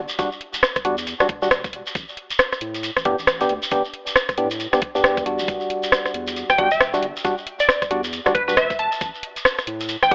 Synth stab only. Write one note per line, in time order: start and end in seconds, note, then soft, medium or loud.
0.19 0.29 G3 medium
0.19 0.29 D4 medium
0.19 0.29 F#4 loud
0.85 0.96 G3 medium
0.85 0.96 D4 medium
0.85 0.96 F#4 medium
1.20 1.27 G3 medium
1.20 1.27 D4 medium
1.20 1.27 F#4 medium
1.42 1.49 G3 medium
1.42 1.49 D4 medium
1.42 1.49 F#4 medium
3.05 3.16 B3 medium
3.05 3.16 D4 medium
3.05 3.16 G4 loud
3.41 3.53 B3 medium
3.41 3.53 D4 medium
3.41 3.53 G4 medium
3.72 3.82 B3 medium
3.72 3.82 D4 medium
3.72 3.82 G4 loud
4.38 4.48 B3 medium
4.38 4.48 D4 medium
4.38 4.48 G4 medium
4.73 4.80 B3 medium
4.73 4.80 D4 medium
4.73 4.80 G4 medium
4.95 5.24 B3 medium
4.95 5.24 D4 medium
4.95 5.24 G4 medium
5.26 6.56 G3 medium
5.26 6.56 D4 medium
5.26 6.56 F#4 medium
6.58 6.69 G3 medium
6.58 6.69 D4 medium
6.58 6.69 F#4 loud
6.94 7.06 G3 medium
6.94 7.06 D4 medium
6.94 7.06 F#4 medium
7.25 7.35 G3 medium
7.25 7.35 D4 medium
7.25 7.35 F#4 loud
7.91 8.01 G3 medium
7.91 8.01 D4 medium
7.91 8.01 F#4 medium
8.26 8.33 G3 medium
8.26 8.33 D4 medium
8.26 8.33 F#4 medium
8.48 8.55 G3 medium
8.48 8.55 D4 medium
8.48 8.55 F#4 medium
10.11 10.15 B3 medium
10.11 10.15 D4 medium
10.11 10.15 G4 loud